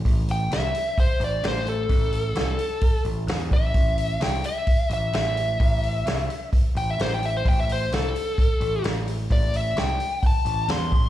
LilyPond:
<<
  \new Staff \with { instrumentName = "Lead electric guitar" } { \time 4/4 \key a \minor \tempo 4 = 130 r8 g''8 e''4 c''8 d''8 c''8 a'8~ | a'2~ a'8 r4 e''8~ | e''4 g''8 e''4 e''8 e''4~ | e''2 r8 g''16 e''16 c''16 g''16 e''16 c''16 |
g''16 e''16 c''8 a'2 r4 | d''8 e''8 g''4 a''4 c'''4 | }
  \new Staff \with { instrumentName = "Picked electric bass" } { \clef bass \time 4/4 \key a \minor a,,4 c,8 r4 a,,8 a,,4 | a,,4 c,8 r4 a,,8 e,8 a,,8 | a,,4 c,8 r4 a,,8 a,,4 | a,,4 c,8 r4 a,,8 a,,4 |
a,,4 c,8 r4 a,,8 a,,4 | a,,4 c,8 r4 a,,8 e,8 a,,8 | }
  \new DrumStaff \with { instrumentName = "Drums" } \drummode { \time 4/4 <hho bd>8 hho8 <hho sn>8 hho8 <hho bd>8 hho8 <hho sn>8 hho8 | <hho bd>8 hho8 <hho sn>8 hho8 <hho bd>8 hho8 <hho sn>8 <hho bd>8 | <hho bd>8 hho8 <hho sn>8 hho8 <hho bd>8 hho8 <hho sn>8 hho8 | <hho bd>8 hho8 <hho sn>8 hho8 <hho bd>8 hho8 <hho sn>8 hho8 |
<hho bd>8 hho8 <hho sn>8 hho8 <hho bd>8 hho8 <hho sn>8 hho8 | <hho bd>8 hho8 <hho sn>8 hho8 <hho bd>8 hho8 <hho sn>8 <hho bd>8 | }
>>